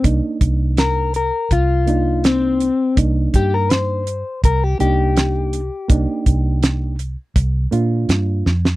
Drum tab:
HH |x-x-x-x-x-x-x-x-|x-x-x-x-x-x-x-x-|x-x-x-x-x-x-x---|
SD |----o-------o---|----o-------o---|----o-------o-oo|
BD |o-o-----o-------|o-o-----o-------|o-o-----o-------|